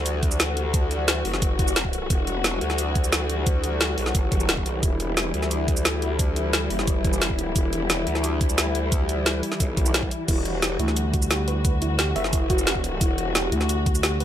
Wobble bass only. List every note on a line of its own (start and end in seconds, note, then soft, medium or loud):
0.00 1.24 D2 loud
1.25 2.09 F#1 medium
2.10 2.60 E1 loud
2.61 3.96 D2 medium
3.98 4.13 B1 loud
4.15 4.47 G1 loud
4.49 4.65 E1 loud
4.66 4.82 B1 medium
4.83 5.33 E1 medium
5.34 6.69 D2 loud
6.70 7.54 F#1 loud
7.56 8.05 E1 loud
8.07 9.42 D2 loud
9.60 10.10 B1 loud
10.28 10.78 E1 loud
12.16 13.00 F#1 loud
13.01 13.51 E1 loud